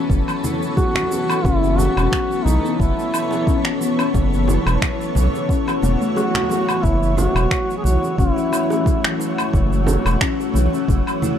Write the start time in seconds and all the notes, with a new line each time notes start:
Already playing: E3 B3 A4 C#5
0.10 F#1 F#3, kick, shaker
0.28 low woodblock, shaker
0.44 E4, high conga, shaker
0.63 shaker
0.77 F#3 F#4, kick, high bongo, shaker
0.95 finger snap, high conga, low conga, shaker
1.11 high bongo, shaker
1.30 low woodblock, shaker
1.44 F#1 C#4 E4, kick, shaker
1.63 F#4, shaker
1.78 E3 F#4, low conga, shaker
1.97 E1 C#4, high conga, low woodblock, shaker
2.12 F#3, finger snap, kick, shaker
2.32 shaker
2.45 B1 D#4 E4, high conga, shaker
2.64 high bongo, shaker
2.79 F#1 F#3 E4, kick, shaker
2.99 shaker
3.14 low woodblock, shaker
3.31 high bongo, shaker
3.47 C#4, kick, shaker
3.65 F#4, finger snap, shaker
3.81 E3, shaker
3.99 C#4, low woodblock, shaker
4.14 F#1 F#3, kick, shaker
4.33 shaker
4.48 E4, high bongo, low conga, shaker
4.66 E1, high conga, low woodblock, shaker
4.82 F#3, finger snap, kick, shaker
5.01 shaker
5.15 B1, high conga, shaker
5.34 high bongo, shaker
5.49 C#4, kick, swell, shaker
5.67 F#4, low woodblock, shaker
5.82 E1 B3, high conga, shaker
6.01 A3, shaker
6.16 F#3 F#4, high bongo, shaker
6.35 finger snap, high conga, low conga, shaker
6.49 F#3, high bongo, high conga, shaker
6.68 F#3, low woodblock, shaker
6.83 F#1 F#3 A3 E4 F#4, kick, shaker
7.03 shaker
7.17 E4 F#4, low conga, shaker
7.35 E1, high conga, low woodblock, shaker
7.51 F#3, finger snap, kick, shaker
7.70 shaker
7.77 G#4
7.84 B1 F#4, high conga, shaker
8.03 high bongo, shaker
8.18 F#1 C#4 E4, kick, shaker
8.36 F#4, shaker
8.52 E3, low woodblock, shaker
8.70 C#4, high bongo, shaker
8.86 F#3, kick, shaker
9.04 finger snap, shaker
9.20 E4, shaker
9.38 low woodblock, shaker
9.53 F#1 F#3, kick, shaker
9.73 shaker
9.87 low conga, shaker
10.05 E1, low woodblock, shaker
10.21 C#4, finger snap, kick, shaker
10.40 F#4, shaker
10.54 B1 E3, high conga, shaker
10.73 C#4, shaker
10.88 F#1 F#3, kick, shaker
11.07 low woodblock, shaker
11.22 E4, high conga, shaker